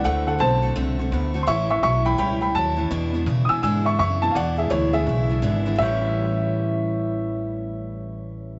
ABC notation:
X:1
M:4/4
L:1/8
Q:"Swing" 1/4=167
K:Amix
V:1 name="Upright piano"
[Af] [Af] [=ca]2 z4 | [e=c'^c'] [ec'] [ec'] [gb] [gb] [gb] a2 | z3 [^g^d'e'] [ge'] [ec'] [ec'] a | [d=f^f] [^Ge] [Ec] [Ge]4- [Ge] |
e8- | e8 |]
V:2 name="Steel-string acoustic guitar"
[D,A,=CF] [A,CF] [D,A,CF] [A,CF] [D,A,CF] [A,CF] [D,A,CF] [A,CF] | [A,,E,G,CE] [G,CE] [E,G,CE] [G,CE] [A,,E,G,CE] [CE] [E,G,CE] [G,CE] | [E,,B,,E,^G,DE] [E,G,DE] [E,G,DE] [E,G,DE] [E,,B,,E,G,DE] [E,G,DE] [E,G,DE] [E,G,DE] | [E,,B,,E,^G,DE] [E,G,DE] [E,,B,,E,G,DE] [E,G,DE] [E,G,DE] [E,G,DE] [E,,B,,E,G,DE] [E,G,DE] |
[A,,E,G,CE]8- | [A,,E,G,CE]8 |]
V:3 name="Clean electric guitar" clef=bass
[D,A,] [D,A,] [D,B,] [D,A,] [D,=C] [D,C] [D,B,] [D,A,] | [A,,E,] [A,,E,] [A,,F,] [A,,E,] [A,,G,] [A,,G,] [A,,F,] [A,,E,] | [E,,B,,] [E,,B,,] [E,,C,] [E,,B,,] [E,,D,] [E,,D,] [E,,C,] [E,,B,,] | [E,,B,,]2 [E,,B,,] [E,,B,,] [E,,C,]2 [E,,D,] [E,,D,] |
[A,,E,G,CG]8- | [A,,E,G,CG]8 |]
V:4 name="Upright bass" clef=bass
D,,2 B,,,2 =C,,2 D,,2 | A,,,2 B,,,2 C,,2 ^D,,2 | E,,2 B,, z ^G,,2 F,,2 | E,,2 D,,2 B,,,2 ^G,,,2 |
A,,,8- | A,,,8 |]